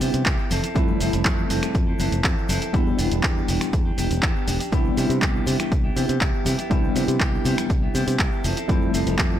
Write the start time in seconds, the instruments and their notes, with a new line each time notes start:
Already playing: tine electric piano G3 B3 D4 E4
0.01 fingered electric bass C3, clean electric guitar G3 B3 E4 G4, open hi-hat, high conga, shaker
0.14 fingered electric bass C3, closed hi-hat, shaker
0.25 fingered electric bass C2, clean electric guitar G3 B3 E4 G4, kick, clap, closed hi-hat, shaker
0.38 clean electric guitar B3 E4 G4, shaker
0.50 fingered electric bass F1, clean electric guitar E3 C4 E4 A4, open hi-hat, high conga, shaker
0.63 clean electric guitar C4 E4 A4, closed hi-hat, shaker
0.75 fingered electric bass F2, clean electric guitar E3 C4 E4 A4, tine electric piano G3 A3 C4 E4, kick, closed hi-hat, shaker
0.88 high conga, shaker
1.00 fingered electric bass F1, clean electric guitar E3 C4 E4 A4, open hi-hat, shaker
1.13 fingered electric bass F1, closed hi-hat, shaker
1.25 fingered electric bass F2, clean electric guitar E3 C4 E4 A4, kick, clap, closed hi-hat, high conga, shaker
1.38 shaker
1.49 fingered electric bass F1, clean electric guitar E3 C4 E4 A4, open hi-hat, low conga, shaker
1.63 finger snap, closed hi-hat, high conga, shaker
1.74 fingered electric bass F2, kick, closed hi-hat, shaker
1.87 clean electric guitar C4 E4 A4
1.99 fingered electric bass F1, clean electric guitar E3 C4 E4 A4, open hi-hat, high conga, shaker
2.12 fingered electric bass F1, closed hi-hat, shaker
2.24 fingered electric bass F2, clean electric guitar E3 C4 E4 A4, kick, clap, closed hi-hat, shaker
2.38 shaker
2.48 fingered electric bass F1, clean electric guitar E3 C4 E4 A4, open hi-hat, high conga, shaker
2.61 clean electric guitar C4 E4 A4, closed hi-hat, shaker
2.73 fingered electric bass E2, tine electric piano G3 B3 D4 E4, clean electric guitar B3 D4 G4, kick, closed hi-hat, shaker
2.87 high conga, shaker
2.98 fingered electric bass E1, clean electric guitar B3 D4 G4, open hi-hat, shaker
3.11 fingered electric bass E1, closed hi-hat, shaker
3.23 fingered electric bass E2, clean electric guitar B3 D4 G4, kick, clap, closed hi-hat, high conga, shaker
3.37 shaker
3.48 fingered electric bass E1, clean electric guitar B3 D4 G4, open hi-hat, low conga, shaker
3.60 finger snap, closed hi-hat, high conga, shaker
3.73 fingered electric bass E2, kick, closed hi-hat, shaker
3.85 clean electric guitar D4 G4
3.97 fingered electric bass E1, clean electric guitar B3 D4 G4, open hi-hat, high conga, shaker
4.11 fingered electric bass E1, closed hi-hat, shaker
4.22 fingered electric bass E2, clean electric guitar B3 D4 G4, kick, clap, closed hi-hat, shaker
4.36 shaker
4.47 fingered electric bass E1, clean electric guitar B3 D4 G4, open hi-hat, high conga, shaker
4.60 clean electric guitar D4 G4, closed hi-hat, shaker
4.72 fingered electric bass C2, clean electric guitar G3 B3 E4 G4, tine electric piano G3 B3 D4 E4, kick, closed hi-hat, shaker
4.85 high conga, shaker
4.97 fingered electric bass C3, clean electric guitar G3 B3 E4 G4, open hi-hat, shaker
5.09 fingered electric bass C3, closed hi-hat, shaker
5.22 fingered electric bass C2, clean electric guitar G3 B3 E4 G4, kick, clap, closed hi-hat, high conga, shaker
5.35 shaker
5.46 fingered electric bass C3, clean electric guitar G3 B3 E4 G4, open hi-hat, low conga, shaker
5.59 clean electric guitar B3 E4 G4, finger snap, closed hi-hat, high conga, shaker
5.72 fingered electric bass C2, kick, closed hi-hat, shaker
5.84 clean electric guitar B3 E4 G4
5.96 fingered electric bass C3, clean electric guitar G3 B3 E4 G4, open hi-hat, high conga, shaker
6.09 fingered electric bass C3, closed hi-hat, shaker
6.21 fingered electric bass C2, clean electric guitar G3 E4 G4, kick, clap, closed hi-hat, shaker
6.33 shaker
6.45 fingered electric bass C3, clean electric guitar G3 B3 E4 G4, open hi-hat, high conga, shaker
6.58 clean electric guitar B3 E4 G4, closed hi-hat, shaker
6.70 fingered electric bass C2, tine electric piano G3 B3 D4 E4, clean electric guitar G3 B3 E4 G4, kick, closed hi-hat, shaker
6.84 high conga, shaker
6.95 fingered electric bass C3, clean electric guitar G3 B3 E4 G4, open hi-hat, shaker
7.08 fingered electric bass C3, closed hi-hat, shaker
7.20 fingered electric bass C2, clean electric guitar G3 B3 E4 G4, kick, clap, closed hi-hat, high conga, shaker
7.34 shaker
7.45 fingered electric bass C3, clean electric guitar G3 B3 E4 G4, open hi-hat, low conga, shaker
7.57 finger snap, closed hi-hat, high conga, shaker
7.69 fingered electric bass C2, kick, closed hi-hat, shaker
7.82 clean electric guitar B3 E4 G4
7.94 fingered electric bass C3, clean electric guitar G3 B3 E4 G4, open hi-hat, high conga, shaker
8.07 fingered electric bass C3, closed hi-hat, shaker
8.19 fingered electric bass C2, clean electric guitar G3 B3 E4 G4, kick, clap, closed hi-hat, shaker
8.32 shaker
8.44 fingered electric bass F1, clean electric guitar F3 C4 E4 A4, open hi-hat, high conga, shaker
8.56 clean electric guitar C4 E4 A4, closed hi-hat, shaker
8.68 fingered electric bass F2, clean electric guitar F3 C4 E4 A4, tine electric piano G3 A3 C4 E4, kick, closed hi-hat, shaker
8.82 high conga, shaker
8.93 fingered electric bass F1, clean electric guitar F3 C4 E4 A4, open hi-hat, shaker
9.06 fingered electric bass F1, closed hi-hat, shaker
9.18 fingered electric bass F2, clean electric guitar C4 E4 A4, kick, clap, closed hi-hat, high conga, shaker
9.31 shaker